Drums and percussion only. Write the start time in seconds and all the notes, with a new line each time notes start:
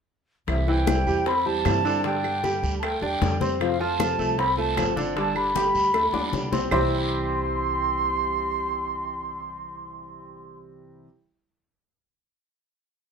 0.48 high bongo, high conga, long guiro, claves
0.67 high bongo, high conga
0.87 high bongo, high conga, short guiro, claves
1.07 short guiro
1.26 high bongo, high conga, long guiro
1.45 high bongo, high conga
1.65 high bongo, low bongo, high conga, short guiro, claves
1.85 high bongo, short guiro
2.04 high bongo, high conga, long guiro
2.24 high bongo, high conga, claves
2.44 high bongo, high conga, short guiro
2.64 high conga, short guiro
2.83 high bongo, high conga, long guiro, claves
3.02 high bongo, high conga
3.22 high bongo, low bongo, high conga, short guiro
3.41 high bongo, high conga, short guiro
3.61 high bongo, high conga, long guiro, claves
3.80 high bongo, high conga
4.00 high bongo, high conga, short guiro, claves
4.19 short guiro
4.39 high bongo, high conga, long guiro
4.58 high bongo, high conga
4.77 high bongo, low bongo, high conga, short guiro, claves
4.97 high bongo, high conga, short guiro
5.16 high bongo, high conga, long guiro
5.36 high bongo, high conga, claves
5.55 high bongo, high conga, short guiro
5.75 high conga, short guiro
5.94 high bongo, high conga, long guiro, claves
6.14 low bongo, high conga
6.33 low bongo, high conga, short guiro
6.52 low bongo, high conga, short guiro
6.71 low bongo, low conga, long guiro, claves